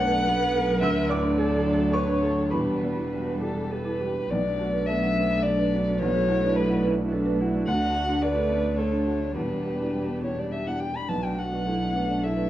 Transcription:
Already playing: B1 F#2 F#3 A3 D4 A4 F#5 D6 F#6
0.00 A3 D4 B4
0.13 D5
0.27 B3 F#4
0.40 B4
0.55 A3
0.81 D2 F#3 D4 E5 E6
1.09 A2 D5 D6
1.23 D4
1.37 A3 A4 D5
1.52 A4
1.65 D4
1.80 F#4
1.92 F#4 B4 C#5 C#6
2.07 D4
2.22 A3 A4
2.50 E1 E2 G3 E4 G4 B4 B5
2.82 B2 D5
2.97 E4
3.11 G3 F#4 D5
3.26 B4
3.40 D4 E4 G4 A4
3.56 G4
3.71 G4 A4 B4
3.85 E4
4.00 G3 G4
4.29 B1 A3 F#4 B4 D5
4.46 D4
4.59 F#4 A5
4.73 D4 B4
4.87 A3 B3 E5 A5
5.02 D4 F#5
5.17 C#4 B4
5.30 D4 D5
5.43 D4 A4 D5
5.59 D4 B4
5.74 F#4
5.88 D4
5.99 B1 F#4 B4 C#5
6.15 A3
6.27 E4 F#4 A5
6.43 D4 B4
6.55 A3 B4 A5
6.69 D4 F#5
6.83 C#4 B4
6.98 D4 D5
7.12 D4 A4
7.26 D4 B4
7.39 E4 F#4
7.54 D4
7.67 D2 A3 D4 F#4 F#5
7.81 D4
7.95 F#4 D5
8.09 D4
8.22 A3 B4 D5
8.36 D4 A4
8.51 C#4 D4
8.64 D4 F#4
8.78 A4 C#5
8.93 D4
9.07 F#4
9.21 D4
9.35 E1 E2 G3 B3 E4 G4 B4
9.50 D4
9.65 G4 D5
9.80 D4 E4
9.93 G3 D5
10.08 D4 B4
10.22 C#4 E4 C#5
10.37 D4 G4 D5
10.52 G4 E5
10.66 D4 E4 F#5
10.80 G4 G5
10.94 D4 B5
11.09 B1 A3 D4 F#4 B4 A5
11.23 D4 G5
11.37 F#4 F#5 A5
11.52 D4 B4
11.66 A3 E4 A5
11.80 D4 F#5
11.95 C#4 D4 B4
12.08 D4 D5
12.23 E4 A4 E5
12.36 D4 B4

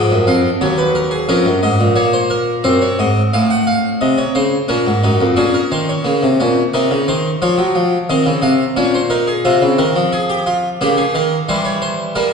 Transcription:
Already playing: G#2 F3 D#5
0.11 F#2
0.27 F2 F5
0.61 D#2 F#3 C#5
0.78 B4
0.95 A#4
1.11 G#4
1.29 F2 C#4 A#4
1.45 F#2
1.63 G#2 D#5
1.80 A#2
1.96 A#3 C#5
2.13 C5
2.30 A#4
2.64 F#2 C4 C5
2.82 C#5
2.99 G#2 D#5
3.33 A2 F5
3.50 F#5
3.67 F5
4.01 C3 D#5
4.18 C#5
4.35 C#3 C5
4.68 A#2 C#4 A#4
4.87 G#2
5.03 F#2 D#4
5.21 F2
5.37 A#2 C#4 G#4
5.54 A#4
5.72 D#3 C5
5.89 C#5
6.04 C#3 A#3
6.23 C3
6.40 A#2 C#4
6.74 C3 D#4 A#4
6.91 C#3
7.08 D#3 C5
7.42 F3 F4 C#5
7.58 F#3
7.75 F3
8.10 D#3 C4 D#5
8.26 C#3
8.42 C3 F5
8.77 A#2 C#4 C#5
8.94 C5
9.10 D#4 A#4
9.27 G#4
9.45 C3 C4 F4
9.62 C#3
9.78 D#3 A#4
9.96 F3
10.13 G#4
10.30 G4
10.46 F4
10.81 C#3 A#3 G4
10.97 G#4
11.15 D#3 A#4
11.49 E3 G3 C5
11.65 C#5
11.82 C5
12.15 G3 A#3 A#4

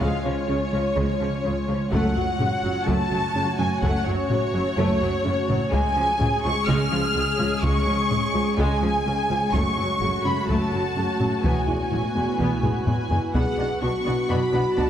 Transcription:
Already playing: G#3 C#4 F4 C#5
0.00 C#2 C#3 F3 G#3 G#4 F5, taiko
0.25 C#2 C#3 F3 C#4 C#5
0.48 C#2 C#3 C#4
0.72 C#2 C#3 F3 G#3
0.96 C#2 C#3 F3 G#3 G#4, taiko
1.20 C#2 C#3 F3
1.44 C#2 C#3 G#3
1.68 C#2 C#3 F3 G#3
1.92 F#1 F#2 F#3 A3 C#4 F#4 A4 C#5 F#5, taiko
2.16 F#1 F#2 F#3 F#4
2.40 F#1 F#2 C#3 F#4, taiko low-mid
2.63 F#1 F#2 F#3 C#4
2.87 F#1 F#2 F#3 A3 A4 A5, taiko
3.11 F#1 F#2 F#3 A3
3.35 F#1 F#2 C#3 C#4
3.59 F#1 F#2 F#3 C#4 G#5, taiko low-mid
3.82 F#1 F#2 F#3 A3 A4 F#5, taiko
4.06 F#1 F#2 F#3 F#4 C#5
4.30 F#1 F#2 C#3 F#4, taiko low-mid
4.53 F#1 F#2 F#3 C#4
4.76 F#1 F#2 F#3 A3 A4, taiko
5.01 F#1 F#2 F#3 A3
5.25 F#1 F#2 C#3 C#4
5.48 F#1 F#2 F#3 C#4, taiko low-mid
5.72 C#2 C#3 G#3 C#4 G#4 C#5 G#5, taiko
5.97 C#2 F3 C#4
6.20 C#2 C#3 C#4, taiko low-mid
6.44 C#2 F3 G#3 C#6
6.68 C#2 C#3 G#3 F6, taiko
6.91 C#2 F3
7.15 C#2 C#3 G#3
7.39 C#2 F3 G#3, taiko low-mid
7.63 C#2 C#3 G#3 C#6, taiko
7.86 C#2 F3 C#4
8.11 C#2 C#3 C#4, taiko low-mid
8.35 C#2 F3 G#3
8.58 C#2 C#3 G#3 G#5, taiko
8.82 C#2 F3
9.06 C#2 C#3 G#3
9.30 C#2 F3 G#3, taiko low-mid
9.53 F#1 F#2 F#3 A3 F#4 C#6, taiko
9.77 F#1 F#2 F#3 F#4
10.01 F#1 F#2 C#3 F#4, taiko low-mid
10.25 F#1 F#2 F#3 C#4 B5
10.49 F#1 F#2 F#3 A3 A5, taiko
10.72 F#1 F#2 F#3 A3
10.96 F#1 F#2 C#3 C#4
11.20 F#1 F#2 F#3 C#4, taiko low-mid
11.44 E1 E2 E3 B3 E4 B4 G#5, taiko
11.67 E1 E2 G#3 E4
11.91 E1 E2 F#3 E4, taiko low-mid
12.15 E1 E2 G#3 B3
12.39 E1 E2 E3 B3, taiko
12.63 E1 E2 G#3, taiko low-mid
12.86 E1 E2 F#3 B3 G#5, taiko low-mid
13.10 E1 E2 G#3 B3, taiko low
13.33 B1 B2 B3 D4 F#4 G#4 B4 F#5, taiko
13.58 B1 B2 B3 D4 F#4 F#5
13.82 B1 B2 B3 D4 F#4 F#5 C#6
14.05 B1 B2 B3 D4 F#4 F#5
14.29 B1 B2 B3 D4 F#4 B4 F#5 B5, taiko low
14.53 B1 B2 B3 D4 F#4 F#5
14.76 B1 B2 B3 D4 F#4 F#5 A5, taiko

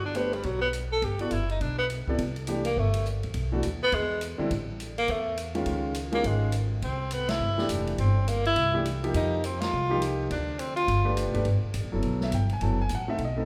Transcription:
Already playing: G1
0.05 D4
0.15 A3 B3 D4 G4 C5, hi-hat pedal, ride
0.33 G3, ride
0.43 B1 F#3, kick, ride
0.62 B3
0.73 hi-hat pedal, ride
0.92 A4
1.02 G1 G4, kick, ride
1.19 B3 E4 F#4 A4 D5, ride
1.31 F#1 E4, hi-hat pedal, ride
1.49 D#4, ride
1.61 B1 D4, kick, ride
1.79 B3
1.90 hi-hat pedal, ride
2.07 C3 B3 E4 A4 D5, muted upright bass stroke, kick
2.18 C2, kick, ride
2.36 ride
2.47 E3 A3 D4 G4, hi-hat pedal, ride
2.65 A#3, ride
2.76 G1 A3, kick
2.94 ride
3.05 hi-hat pedal
3.23 A1, ride
3.34 B1, kick, ride
3.52 E3 A3 D4 F#4
3.63 D#2, hi-hat pedal, ride
3.83 B3
3.92 E2 G#3, kick, ride
4.21 hi-hat pedal, ride
4.38 D3 G3 C4 E4, muted upright bass stroke
4.51 A1, kick, ride
4.80 hi-hat pedal, ride
4.98 A#3, ride
5.08 E2 A3, kick, ride
5.37 hi-hat pedal, ride
5.55 D#3 G#3 C#4 F4, ride
5.66 C#2, kick, ride
5.94 hi-hat pedal, ride
6.12 D#3 G#3 A#3 C#4 F4, ride
6.24 G#1 G#3, kick, ride
6.52 hi-hat pedal, ride
6.82 C2 C4, kick, ride
7.11 B3, hi-hat pedal, ride
7.29 E4, snare, ride
7.40 G1
7.58 E3 A3 D4 G4, snare
7.69 F1, hi-hat pedal, ride
7.87 ride
7.98 G1 C4, kick, ride
8.28 A#3, hi-hat pedal, ride
8.45 E4, ride
8.56 C2, kick, ride
8.74 E3 A3 D4 G4
8.85 hi-hat pedal, ride
9.03 F3 A#3 D#4 G4, ride
9.14 F2 D#4, kick, ride
9.44 C4, hi-hat pedal, ride
9.61 F4, snare, ride
9.73 C2
9.89 F3 A#3 D#4 G4
10.02 hi-hat pedal, ride
10.30 D2 D4, kick, ride
10.59 C4, hi-hat pedal, ride
10.76 F4, ride
10.88 G1, kick, ride
11.04 A3 D4 G4 B4
11.17 hi-hat pedal, ride
11.26 B1
11.33 F#1 A3 D4 G4 B4, ride
11.45 G1, kick, ride
11.63 muted upright bass stroke
11.74 A1, kick, hi-hat pedal, ride
11.84 G1
11.92 F#1 F#3 B3 E4 A4
12.02 B1, kick, ride
12.21 E5, snare
12.32 G1 G5, kick, hi-hat pedal, ride
12.49 G#5, ride
12.61 F#1 F#3 B3 E4 A4 A5, kick, ride
12.82 G#5
12.89 A1, kick, hi-hat pedal, ride
12.95 F#5
13.08 A3 C4 D#4 A4 E5
13.18 B1, kick, ride
13.25 D#5
13.36 A3 C4 D#4 A4

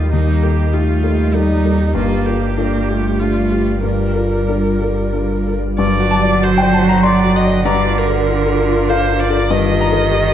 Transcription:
Already playing: D#2 G3 D#4 F4 G4 A#4 D#5
0.12 D#2 A#3 D#4
0.43 G4 A#4
0.73 A3 D#4 F4 G4
1.03 G4 A#4
1.33 G3 D#4 G4 A#4
1.65 G4 A#4
1.95 G1 G2 G3 A#3 F4 D5
2.25 F4 G4 A#4
2.56 A#3 D4 F4 A#4
2.88 A3 F4 G4
3.19 D4 F4 G4
3.51 F4 G4
3.83 G2 G3 A#4
4.15 F4 A#4
4.49 D4 F4 A#4
4.80 F4 A#4
5.13 D4 F4 A#4
5.46 F4 A#4
5.78 G1 G2 D3 F#3 F#4 D5 F#5
6.00 F#4
6.11 A5
6.22 D5
6.42 F#4 C5
6.58 G5
6.62 D5
6.73 A5
6.82 F#4
6.89 A#5
7.03 D5 C6
7.24 F#4
7.36 D#5
7.45 D5
7.65 G2 D3 F4 A#4 D5 A#5
7.87 F4
7.98 A#4
8.08 A#4
8.29 F4
8.48 A#4
8.69 F4
8.89 A#4 C5 F5
9.10 F4
9.20 D5
9.31 A#4
9.50 G2 D#3 D#4 G4 D#5
9.70 G4
9.81 A#5
9.92 A#4
10.11 G4

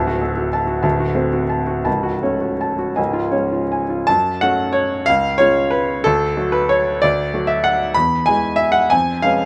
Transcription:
Already playing: D1 D2 A5
0.07 F#4
0.21 A3 A4
0.37 F#4
0.53 A5
0.67 F#4
0.83 D1 D2 A5
1.00 F#4
1.15 A3 C4 C5
1.33 F#4
1.49 A5
1.67 F#4
1.85 C#1 C#2 A5
2.03 F#4
2.23 A3 C#4 C#5
2.41 F#4
2.61 A5
2.79 F#4
2.96 C#1 C#2 G#5
3.13 F4
3.31 G#3 C#4 C#5
3.52 F4
3.72 G#5
3.90 F4
4.07 F#2 A5
4.41 A3 C#4 F#4 F#5
4.73 C#5
5.06 C#2 F5
5.38 G#3 C#4 F4 C#5
5.71 B4
6.04 D2 A4
6.37 F#3 A3 F#4
6.52 B4
6.69 C#5
7.02 D2 D5
7.34 F#3 A3 F#4
7.47 E5
7.64 F#5
7.94 E2 B5
8.26 E3 G#3 G#4 G#5
8.56 E5
8.72 F#5
8.90 F2 G#5
9.22 G#3 C#4 B4 F5

